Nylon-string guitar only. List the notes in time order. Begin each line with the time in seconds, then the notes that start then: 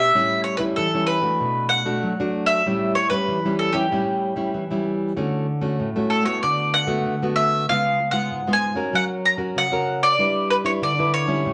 Already playing: B2
0.15 A2 G3 C#4 E4
0.59 G3 C#4 E4
0.78 E3
0.94 G3 C#4 E4
1.22 A3 D4 F#4
1.40 B2
1.85 A3 D4 F#4
2.03 F#3
2.20 A3 D4 F#4
2.66 A2 G3 C#4 E4
3.10 G3 C#4 E4
3.28 E3
3.45 G3 C#4 E4
3.73 G3 C#4 E4
3.91 A2 G3 C#4 E4
4.36 G3 C#4 E4
4.54 E3
4.71 G3 C#4 E4
5.17 D3 A3 C#4 F#4
5.61 A3 C#4 F#4
5.80 A2
5.96 A3 C#4 F#4
6.24 A3 B3 F#4
6.43 D3
6.87 A3 B3 F#4
7.06 D3
7.22 A3 B3 F#4
7.69 C#3 G#3 B3 F4
8.13 G#3 B3 F4
8.30 G#2
8.47 G#3 B3 F4
8.75 C#4 F#4 A#4
8.93 F#3
9.37 C#4 F#4 A#4
9.56 C#3
9.72 C#4 F#4 A#4
10.19 G3 D4 E4 B4
10.64 D4 E4 B4
10.82 D3
10.99 D4 E4 B4
11.27 G3 C#4 E4
11.45 A2